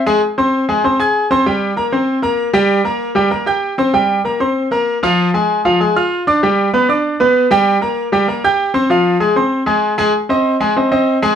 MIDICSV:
0, 0, Header, 1, 2, 480
1, 0, Start_track
1, 0, Tempo, 309757
1, 346, Time_signature, 4, 2, 24, 8
1, 17591, End_track
2, 0, Start_track
2, 0, Title_t, "Grand piano"
2, 0, Program_c, 0, 0
2, 100, Note_on_c, 0, 56, 93
2, 103, Note_on_c, 0, 80, 93
2, 106, Note_on_c, 0, 68, 90
2, 299, Note_off_c, 0, 56, 0
2, 301, Note_off_c, 0, 80, 0
2, 303, Note_off_c, 0, 68, 0
2, 585, Note_on_c, 0, 72, 74
2, 587, Note_on_c, 0, 60, 75
2, 594, Note_on_c, 0, 84, 74
2, 979, Note_off_c, 0, 72, 0
2, 980, Note_off_c, 0, 60, 0
2, 985, Note_off_c, 0, 84, 0
2, 1064, Note_on_c, 0, 56, 77
2, 1065, Note_on_c, 0, 68, 79
2, 1068, Note_on_c, 0, 80, 73
2, 1262, Note_off_c, 0, 56, 0
2, 1262, Note_off_c, 0, 68, 0
2, 1264, Note_off_c, 0, 80, 0
2, 1305, Note_on_c, 0, 60, 74
2, 1312, Note_on_c, 0, 72, 75
2, 1314, Note_on_c, 0, 84, 65
2, 1502, Note_off_c, 0, 60, 0
2, 1507, Note_off_c, 0, 72, 0
2, 1508, Note_off_c, 0, 84, 0
2, 1541, Note_on_c, 0, 68, 76
2, 1544, Note_on_c, 0, 80, 78
2, 1555, Note_on_c, 0, 92, 82
2, 1937, Note_off_c, 0, 68, 0
2, 1939, Note_off_c, 0, 80, 0
2, 1945, Note_off_c, 0, 92, 0
2, 2025, Note_on_c, 0, 60, 78
2, 2026, Note_on_c, 0, 72, 91
2, 2043, Note_on_c, 0, 84, 80
2, 2222, Note_off_c, 0, 60, 0
2, 2223, Note_off_c, 0, 72, 0
2, 2233, Note_off_c, 0, 84, 0
2, 2266, Note_on_c, 0, 55, 72
2, 2268, Note_on_c, 0, 79, 74
2, 2269, Note_on_c, 0, 67, 76
2, 2660, Note_off_c, 0, 55, 0
2, 2661, Note_off_c, 0, 79, 0
2, 2662, Note_off_c, 0, 67, 0
2, 2735, Note_on_c, 0, 58, 73
2, 2742, Note_on_c, 0, 70, 73
2, 2746, Note_on_c, 0, 82, 78
2, 2936, Note_off_c, 0, 58, 0
2, 2941, Note_off_c, 0, 70, 0
2, 2943, Note_off_c, 0, 82, 0
2, 2982, Note_on_c, 0, 72, 67
2, 2983, Note_on_c, 0, 60, 73
2, 2990, Note_on_c, 0, 84, 61
2, 3378, Note_off_c, 0, 60, 0
2, 3378, Note_off_c, 0, 72, 0
2, 3382, Note_off_c, 0, 84, 0
2, 3445, Note_on_c, 0, 58, 82
2, 3452, Note_on_c, 0, 70, 69
2, 3457, Note_on_c, 0, 82, 86
2, 3848, Note_off_c, 0, 58, 0
2, 3852, Note_off_c, 0, 70, 0
2, 3855, Note_off_c, 0, 82, 0
2, 3927, Note_on_c, 0, 55, 95
2, 3931, Note_on_c, 0, 67, 94
2, 3938, Note_on_c, 0, 79, 97
2, 4329, Note_off_c, 0, 55, 0
2, 4331, Note_off_c, 0, 67, 0
2, 4335, Note_off_c, 0, 79, 0
2, 4408, Note_on_c, 0, 58, 82
2, 4416, Note_on_c, 0, 70, 86
2, 4418, Note_on_c, 0, 82, 80
2, 4809, Note_off_c, 0, 58, 0
2, 4814, Note_off_c, 0, 70, 0
2, 4815, Note_off_c, 0, 82, 0
2, 4880, Note_on_c, 0, 55, 85
2, 4891, Note_on_c, 0, 67, 78
2, 4894, Note_on_c, 0, 79, 83
2, 5088, Note_off_c, 0, 55, 0
2, 5094, Note_off_c, 0, 67, 0
2, 5096, Note_off_c, 0, 79, 0
2, 5118, Note_on_c, 0, 58, 74
2, 5132, Note_on_c, 0, 70, 75
2, 5134, Note_on_c, 0, 82, 69
2, 5327, Note_off_c, 0, 58, 0
2, 5335, Note_off_c, 0, 70, 0
2, 5336, Note_off_c, 0, 82, 0
2, 5366, Note_on_c, 0, 67, 74
2, 5374, Note_on_c, 0, 79, 79
2, 5381, Note_on_c, 0, 91, 79
2, 5768, Note_off_c, 0, 67, 0
2, 5773, Note_off_c, 0, 79, 0
2, 5777, Note_off_c, 0, 91, 0
2, 5858, Note_on_c, 0, 60, 85
2, 5865, Note_on_c, 0, 72, 75
2, 5869, Note_on_c, 0, 84, 77
2, 6059, Note_off_c, 0, 60, 0
2, 6063, Note_off_c, 0, 72, 0
2, 6065, Note_off_c, 0, 84, 0
2, 6097, Note_on_c, 0, 55, 69
2, 6102, Note_on_c, 0, 79, 85
2, 6103, Note_on_c, 0, 67, 67
2, 6495, Note_off_c, 0, 55, 0
2, 6497, Note_off_c, 0, 79, 0
2, 6498, Note_off_c, 0, 67, 0
2, 6578, Note_on_c, 0, 58, 69
2, 6583, Note_on_c, 0, 70, 68
2, 6590, Note_on_c, 0, 82, 73
2, 6778, Note_off_c, 0, 58, 0
2, 6782, Note_off_c, 0, 70, 0
2, 6786, Note_off_c, 0, 82, 0
2, 6818, Note_on_c, 0, 60, 61
2, 6825, Note_on_c, 0, 72, 67
2, 6825, Note_on_c, 0, 84, 73
2, 7215, Note_off_c, 0, 60, 0
2, 7219, Note_off_c, 0, 72, 0
2, 7219, Note_off_c, 0, 84, 0
2, 7301, Note_on_c, 0, 58, 76
2, 7310, Note_on_c, 0, 70, 81
2, 7313, Note_on_c, 0, 82, 74
2, 7697, Note_off_c, 0, 58, 0
2, 7702, Note_off_c, 0, 70, 0
2, 7704, Note_off_c, 0, 82, 0
2, 7792, Note_on_c, 0, 53, 91
2, 7797, Note_on_c, 0, 65, 94
2, 7801, Note_on_c, 0, 77, 94
2, 8183, Note_off_c, 0, 53, 0
2, 8186, Note_off_c, 0, 65, 0
2, 8189, Note_off_c, 0, 77, 0
2, 8276, Note_on_c, 0, 56, 73
2, 8276, Note_on_c, 0, 68, 74
2, 8283, Note_on_c, 0, 80, 77
2, 8666, Note_off_c, 0, 56, 0
2, 8666, Note_off_c, 0, 68, 0
2, 8670, Note_off_c, 0, 80, 0
2, 8756, Note_on_c, 0, 65, 79
2, 8759, Note_on_c, 0, 53, 75
2, 8759, Note_on_c, 0, 77, 80
2, 8949, Note_off_c, 0, 65, 0
2, 8951, Note_off_c, 0, 53, 0
2, 8951, Note_off_c, 0, 77, 0
2, 8990, Note_on_c, 0, 56, 68
2, 8997, Note_on_c, 0, 68, 69
2, 9004, Note_on_c, 0, 80, 72
2, 9186, Note_off_c, 0, 56, 0
2, 9189, Note_off_c, 0, 68, 0
2, 9194, Note_off_c, 0, 80, 0
2, 9241, Note_on_c, 0, 65, 81
2, 9243, Note_on_c, 0, 77, 75
2, 9246, Note_on_c, 0, 89, 74
2, 9628, Note_off_c, 0, 65, 0
2, 9630, Note_off_c, 0, 77, 0
2, 9631, Note_off_c, 0, 89, 0
2, 9718, Note_on_c, 0, 74, 77
2, 9720, Note_on_c, 0, 62, 83
2, 9727, Note_on_c, 0, 86, 79
2, 9910, Note_off_c, 0, 74, 0
2, 9911, Note_off_c, 0, 62, 0
2, 9915, Note_off_c, 0, 86, 0
2, 9963, Note_on_c, 0, 67, 82
2, 9965, Note_on_c, 0, 55, 81
2, 9972, Note_on_c, 0, 79, 72
2, 10350, Note_off_c, 0, 67, 0
2, 10351, Note_off_c, 0, 55, 0
2, 10355, Note_off_c, 0, 79, 0
2, 10437, Note_on_c, 0, 59, 74
2, 10438, Note_on_c, 0, 71, 77
2, 10444, Note_on_c, 0, 83, 72
2, 10630, Note_off_c, 0, 59, 0
2, 10630, Note_off_c, 0, 71, 0
2, 10634, Note_off_c, 0, 83, 0
2, 10672, Note_on_c, 0, 74, 68
2, 10676, Note_on_c, 0, 62, 72
2, 10686, Note_on_c, 0, 86, 79
2, 11063, Note_off_c, 0, 74, 0
2, 11066, Note_off_c, 0, 62, 0
2, 11072, Note_off_c, 0, 86, 0
2, 11158, Note_on_c, 0, 71, 80
2, 11165, Note_on_c, 0, 59, 79
2, 11167, Note_on_c, 0, 83, 72
2, 11547, Note_off_c, 0, 71, 0
2, 11551, Note_off_c, 0, 59, 0
2, 11552, Note_off_c, 0, 83, 0
2, 11632, Note_on_c, 0, 55, 95
2, 11641, Note_on_c, 0, 67, 102
2, 11642, Note_on_c, 0, 79, 94
2, 12023, Note_off_c, 0, 55, 0
2, 12029, Note_off_c, 0, 67, 0
2, 12029, Note_off_c, 0, 79, 0
2, 12106, Note_on_c, 0, 58, 83
2, 12113, Note_on_c, 0, 70, 76
2, 12121, Note_on_c, 0, 82, 78
2, 12500, Note_off_c, 0, 58, 0
2, 12504, Note_off_c, 0, 70, 0
2, 12508, Note_off_c, 0, 82, 0
2, 12586, Note_on_c, 0, 55, 79
2, 12592, Note_on_c, 0, 67, 84
2, 12597, Note_on_c, 0, 79, 84
2, 12783, Note_off_c, 0, 55, 0
2, 12787, Note_off_c, 0, 67, 0
2, 12789, Note_off_c, 0, 79, 0
2, 12827, Note_on_c, 0, 58, 80
2, 12835, Note_on_c, 0, 70, 73
2, 12843, Note_on_c, 0, 82, 81
2, 13023, Note_off_c, 0, 58, 0
2, 13028, Note_off_c, 0, 70, 0
2, 13033, Note_off_c, 0, 82, 0
2, 13083, Note_on_c, 0, 67, 84
2, 13087, Note_on_c, 0, 79, 80
2, 13087, Note_on_c, 0, 91, 85
2, 13469, Note_off_c, 0, 67, 0
2, 13472, Note_off_c, 0, 79, 0
2, 13472, Note_off_c, 0, 91, 0
2, 13542, Note_on_c, 0, 60, 83
2, 13548, Note_on_c, 0, 72, 81
2, 13550, Note_on_c, 0, 84, 81
2, 13740, Note_off_c, 0, 60, 0
2, 13743, Note_off_c, 0, 72, 0
2, 13745, Note_off_c, 0, 84, 0
2, 13787, Note_on_c, 0, 53, 78
2, 13790, Note_on_c, 0, 65, 73
2, 13801, Note_on_c, 0, 77, 83
2, 14180, Note_off_c, 0, 53, 0
2, 14182, Note_off_c, 0, 65, 0
2, 14188, Note_off_c, 0, 77, 0
2, 14259, Note_on_c, 0, 56, 76
2, 14262, Note_on_c, 0, 68, 77
2, 14265, Note_on_c, 0, 80, 73
2, 14458, Note_off_c, 0, 56, 0
2, 14460, Note_off_c, 0, 68, 0
2, 14462, Note_off_c, 0, 80, 0
2, 14504, Note_on_c, 0, 60, 68
2, 14506, Note_on_c, 0, 72, 67
2, 14514, Note_on_c, 0, 84, 71
2, 14898, Note_off_c, 0, 60, 0
2, 14899, Note_off_c, 0, 72, 0
2, 14904, Note_off_c, 0, 84, 0
2, 14973, Note_on_c, 0, 68, 85
2, 14976, Note_on_c, 0, 56, 85
2, 14985, Note_on_c, 0, 80, 75
2, 15371, Note_off_c, 0, 68, 0
2, 15373, Note_off_c, 0, 56, 0
2, 15378, Note_off_c, 0, 80, 0
2, 15464, Note_on_c, 0, 56, 97
2, 15471, Note_on_c, 0, 80, 94
2, 15475, Note_on_c, 0, 68, 95
2, 15661, Note_off_c, 0, 56, 0
2, 15665, Note_off_c, 0, 80, 0
2, 15667, Note_off_c, 0, 68, 0
2, 15949, Note_on_c, 0, 60, 70
2, 15956, Note_on_c, 0, 72, 73
2, 15962, Note_on_c, 0, 75, 87
2, 16340, Note_off_c, 0, 60, 0
2, 16345, Note_off_c, 0, 72, 0
2, 16348, Note_off_c, 0, 75, 0
2, 16433, Note_on_c, 0, 56, 84
2, 16437, Note_on_c, 0, 80, 79
2, 16438, Note_on_c, 0, 68, 77
2, 16626, Note_off_c, 0, 56, 0
2, 16628, Note_off_c, 0, 80, 0
2, 16629, Note_off_c, 0, 68, 0
2, 16681, Note_on_c, 0, 60, 72
2, 16684, Note_on_c, 0, 72, 65
2, 16693, Note_on_c, 0, 75, 66
2, 16871, Note_off_c, 0, 60, 0
2, 16873, Note_off_c, 0, 72, 0
2, 16877, Note_off_c, 0, 75, 0
2, 16911, Note_on_c, 0, 60, 77
2, 16916, Note_on_c, 0, 75, 80
2, 16921, Note_on_c, 0, 72, 80
2, 17302, Note_off_c, 0, 60, 0
2, 17304, Note_off_c, 0, 75, 0
2, 17307, Note_off_c, 0, 72, 0
2, 17393, Note_on_c, 0, 56, 95
2, 17397, Note_on_c, 0, 68, 94
2, 17401, Note_on_c, 0, 80, 94
2, 17586, Note_off_c, 0, 56, 0
2, 17588, Note_off_c, 0, 68, 0
2, 17590, Note_off_c, 0, 80, 0
2, 17591, End_track
0, 0, End_of_file